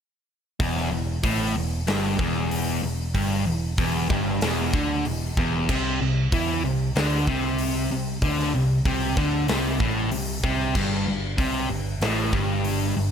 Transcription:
0.60 E1 E2, kick, open hi-hat
0.77 snare
0.92 E1 E2
1.23 A1 A2, kick, open hi-hat
1.56 E1 E2
1.87 G1 G2, snare, open hi-hat
2.19 E1 E2, kick
2.51 open hi-hat
2.83 E1 E2
3.14 G1 G2, kick, open hi-hat
3.47 E1 E2
3.78 E1 E2, kick, open hi-hat
4.09 G1 G2, kick
4.41 E1 E2, snare, open hi-hat
4.73 D2 D3, kick
5.05 E1 E2, open hi-hat
5.37 E1 E2, kick
5.69 C2 C3, kick, crash
6.02 C2 C3
6.32 E2 E3, kick, open hi-hat
6.65 C2 C3
6.96 D2 D3, snare, open hi-hat
7.27 C2 C3, kick
7.58 open hi-hat
7.91 C2 C3
8.22 D2 D3, kick, open hi-hat
8.39 snare
8.55 C2 C3
8.85 C2 C3, kick, open hi-hat
9.17 D2 D3, kick
9.48 C2 C3, snare, open hi-hat
9.80 A1 A2, kick
10.11 C2 C3, open hi-hat
10.43 C2 C3, kick
10.75 G1 G2, kick, crash
11.07 G1 G2
11.38 C2 C3, kick, open hi-hat
11.70 G1 G2
12.01 A1 A2, snare, open hi-hat
12.33 G1 G2, kick
12.64 open hi-hat
12.97 G1 G2

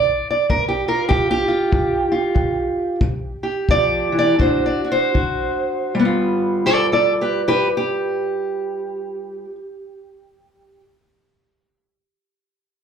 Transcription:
Already playing: D3 D5
0.31 D5
0.50 G2 A#4, kick
0.68 G4
0.88 F4 A#4
1.09 G2 G4, kick
1.31 G4
1.48 F4
1.72 G2, kick
2.12 F4
2.35 G2, kick
3.01 G3, kick
3.43 G4
3.69 F3 D5, kick
4.12 E3
4.19 D5
4.39 D3 D4 F#4 C5, kick
4.66 D5
4.84 F#4
4.92 C5
5.14 D3 F#4, kick
5.95 G3
5.99 B3
6.05 F4
6.66 A4 D5
6.92 A4 D5
7.21 G4 B4
7.48 G4 B4
7.77 G4

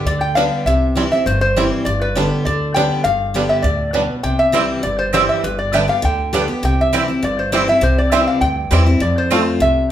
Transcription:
0.06 D2 D3 D5
0.21 G5
0.35 D3 G3 B3 D4 G4 F5
0.66 C2 C3 E5
0.95 E3 G3 C4 E4
1.12 C4 E4 E5
1.26 G1 G2 C5
1.41 C5
1.56 E3 G3 C4 E4
1.85 G1 G2 D5
2.02 B4
2.15 D3 G3 B3 D4 G4
2.45 D2 D3 D5
2.74 D3 G3 B3 D4 G4 G5
3.04 G1 G2 F5
3.34 D3 G3 B3 D4 G4
3.49 E5
3.62 D2 A2 D5
3.93 B2 G3 B3 D4 B4
4.23 C2 C3 G5
4.39 E5
4.52 E3 G3 C4 E4 C5 G5
4.83 G1 G2 D5
4.99 C5
5.13 E3 G3 C4 E4 C5 G5
5.29 E5
5.44 G1 G2 B4
5.59 D5
5.73 D3 G3 B3 D4 G4 D5 E5 G5
5.88 B3 G4 F5
6.02 D2 D3 G5
6.33 D3 G3 B3 D4 G4 D5 G5
6.48 B3 G4
6.63 C2 C3 G5
6.81 E5
6.93 E3 G3 C4 E4 C5 G5
7.08 C4 E4
7.23 G1 G2 D5
7.39 C5
7.52 E3 G3 C4 E4 C5 G5
7.68 C4 E4 E5
7.81 C2 C3 C5
7.98 D5
8.12 E3 G3 C4 E4 C5 E5 G5
8.28 F5
8.41 D2 G2 G5
8.71 E2 E3 G3 C4 E4 C5 G5
8.86 C4 E4
9.00 F2 D5
9.18 C5
9.30 F3 A3 C4 F4 C5 A5
9.60 C2 C3 E5

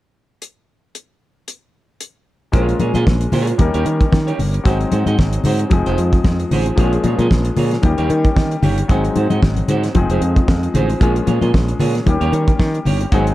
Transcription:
0.42 closed hi-hat
0.95 closed hi-hat
1.48 closed hi-hat
2.01 closed hi-hat
2.52 A#1 G#3 A#3 C#4 F4 G#4 A#4 C#5, kick, closed hi-hat, muted conga
2.68 muted clean electric guitar stroke, closed hi-hat
2.79 A#2 F4 G#4 C#5, closed hi-hat, muted conga, high conga
2.94 A#2 F4 G#4 D#5, closed hi-hat, high conga
3.07 A#1, kick, snare
3.21 muted clean electric guitar stroke, closed hi-hat
3.32 A#2 F4 G#4 C#5, open hi-hat, muted conga, low conga
3.47 muted clean electric guitar stroke, closed hi-hat
3.58 D#2 G3 A#3 C#4 D#4 A#4, muted clean electric guitar stroke, kick, closed hi-hat, high conga
3.74 D#2 D#4 G4 C#5, closed hi-hat
3.85 D#3, muted clean electric guitar stroke, closed hi-hat, muted conga
4.01 muted clean electric guitar stroke, kick, closed hi-hat
4.12 D#3, muted clean electric guitar stroke, kick, snare, muted conga, high conga
4.27 D#4 G4 C#5, closed hi-hat
4.39 G1, muted clean electric guitar stroke, open hi-hat, low conga
4.54 muted clean electric guitar stroke, closed hi-hat
4.63 G#1 F#3 G#3 C4 D#4 F#4 G#4 C5, kick, closed hi-hat, muted conga
4.80 muted clean electric guitar stroke, closed hi-hat
4.92 G#2 D#4 F#4 C5, closed hi-hat, high conga
5.06 G#2 D#4 F#4 D#5, closed hi-hat, high conga
5.18 G#1, kick, snare, muted conga
5.33 muted clean electric guitar stroke, closed hi-hat
5.44 G#2 D#4 F#4 C5, open hi-hat, muted conga, low conga
5.59 muted clean electric guitar stroke, closed hi-hat
5.70 F1 F3 G#3 C4 D#4 G#4, muted clean electric guitar stroke, kick, closed hi-hat, high conga
5.86 F1 D#4 G#4 C5, closed hi-hat
5.97 F2, muted clean electric guitar stroke, closed hi-hat, muted conga
6.13 muted clean electric guitar stroke, kick, closed hi-hat
6.24 F2, muted clean electric guitar stroke, kick, snare, muted conga, high conga
6.40 muted clean electric guitar stroke, closed hi-hat
6.51 A1 D#4 G#4 C5, open hi-hat, low conga
6.66 muted clean electric guitar stroke, closed hi-hat
6.76 A#1 F3 G#3 A#3 C4 F4 G#4 C#5, kick, closed hi-hat, muted conga
6.85 C#4
6.93 muted clean electric guitar stroke, closed hi-hat
7.04 A#2 F4 G#4 C#5, closed hi-hat, muted conga, high conga
7.18 A#2 F4 G#4 D#5, closed hi-hat, high conga
7.30 A#1, kick, snare, muted conga
7.45 muted clean electric guitar stroke, closed hi-hat
7.57 A#2 F4 G#4 C#5, open hi-hat, muted conga, low conga
7.71 muted clean electric guitar stroke, snare, closed hi-hat
7.82 D#2 D#3 G3 A#3 C#4 G4, muted clean electric guitar stroke, kick, closed hi-hat, high conga
7.98 D#2 D#4 G4 C#5, closed hi-hat
8.10 D#3, muted clean electric guitar stroke, closed hi-hat, muted conga
8.25 muted clean electric guitar stroke, kick, closed hi-hat
8.36 D#3, muted clean electric guitar stroke, kick, snare, muted conga, high conga
8.51 muted clean electric guitar stroke, closed hi-hat
8.62 G1 D#4 G4 C#5, open hi-hat, low conga
8.78 muted clean electric guitar stroke, closed hi-hat
8.88 G#1 F#3 G#3 C4 D#4 F#4 G#4 C5, kick, closed hi-hat, muted conga
9.04 muted clean electric guitar stroke, closed hi-hat
9.16 G#2 D#4 F#4 C5, closed hi-hat, high conga
9.30 G#2 D#4 F#4 D#5, closed hi-hat, high conga
9.42 G#1, kick, snare, muted conga
9.56 muted clean electric guitar stroke, closed hi-hat, high conga
9.68 G#2 D#4 F#4 C5, closed hi-hat, muted conga, low conga
9.83 muted clean electric guitar stroke, snare, closed hi-hat
9.94 F1 F3 G#3 C4 D#4 G#4, muted clean electric guitar stroke, kick, closed hi-hat, muted conga, high conga
10.09 F1 D#4 G#4 C5, closed hi-hat
10.21 F2, muted clean electric guitar stroke, closed hi-hat
10.36 muted clean electric guitar stroke, kick, closed hi-hat
10.48 F2, muted clean electric guitar stroke, kick, snare, high conga
10.63 muted clean electric guitar stroke, closed hi-hat
10.74 A1 D#4 G#4 C5, closed hi-hat, muted conga, low conga
10.89 muted clean electric guitar stroke, closed hi-hat
11.00 A#1 F3 G#3 A#3 C#4 F4 G#4 C#5, kick, closed hi-hat, muted conga
11.15 muted clean electric guitar stroke, closed hi-hat
11.26 A#2 F4 G#4 C#5, closed hi-hat, muted conga, high conga
11.41 A#2 F4 G#4 D#5, closed hi-hat, high conga
11.54 A#1, kick, snare, muted conga
11.68 muted clean electric guitar stroke, closed hi-hat
11.79 A#2 F4 G#4 C#5, open hi-hat, low conga
11.95 muted clean electric guitar stroke, snare, closed hi-hat
12.06 D#2 D#3 G3 A#3 C#4 G4, muted clean electric guitar stroke, kick, closed hi-hat, muted conga, high conga
12.21 D#2 D#4 G4 C#5, closed hi-hat
12.32 D#3, muted clean electric guitar stroke, closed hi-hat, muted conga
12.48 muted clean electric guitar stroke, kick, closed hi-hat
12.59 D#3, muted clean electric guitar stroke, kick, snare, muted conga, high conga
12.74 muted clean electric guitar stroke, closed hi-hat
12.85 G1 D#4 G4 C#5, open hi-hat, muted conga, low conga
13.01 muted clean electric guitar stroke, closed hi-hat
13.12 G#1 F#3 G#3 B3 D#4 F#4 G#4 C5, kick, closed hi-hat
13.20 C4
13.27 muted clean electric guitar stroke, closed hi-hat

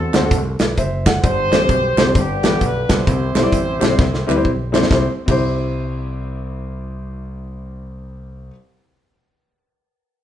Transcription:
Already playing: D3 C4 F#4 A4
0.14 D2 A3 C4 D4 F#4 C5, snare, clap, closed hi-hat
0.23 A3 C4 D4 F#4 A4
0.31 C2, kick, closed hi-hat
0.59 B1 B4 D5, snare, clap, closed hi-hat
0.77 F#1 C5 E5, kick, closed hi-hat
1.06 D5 F#5, kick, snare, clap, closed hi-hat
1.23 G1 G2 G4 C5, kick, closed hi-hat
1.50 A1 G3 C4 D4 G4 C5, snare, clap, closed hi-hat
1.60 G3 C4 D4 G4 C5
1.69 B1, kick, closed hi-hat
1.97 C2 G3 C4 D4 G4 C5, snare, clap, closed hi-hat
2.06 G3 C4 D4 G4 C5
2.15 G1 G2 B3 D4 G4, kick, closed hi-hat
2.43 A1 G3 B3 D4 G4 B4, snare, clap, closed hi-hat
2.52 G3 B3 D4 G4 A4
2.61 B1 B4, kick, closed hi-hat
2.89 C2 G3 B3 D4 E4 G4 B4, kick, snare, clap, closed hi-hat
2.93 C5
3.07 C2 C3, kick, closed hi-hat
3.35 B1 G3 C4 E4 G4 C5, snare, clap, closed hi-hat
3.42 G3 C4 E4 G4 D5
3.52 A1, kick, closed hi-hat
3.79 B1 G3 C4 E4 G4 C5, snare, clap, closed hi-hat
3.89 G3 C4 E4 G4 C5
3.99 C2, kick, snare
4.14 snare
4.27 D2 G3 C4 E4 G4 B4, clap
4.35 G3 C4 E4 G4 C5
4.45 B1, kick
4.72 G3 C4 E4 G4 C5, snare, clap
4.83 snare
4.88 C2 C4 E4, kick, snare, clap
4.92 G4 C5
5.26 C2 C4 E4 G4, kick, clap, crash
5.31 C5

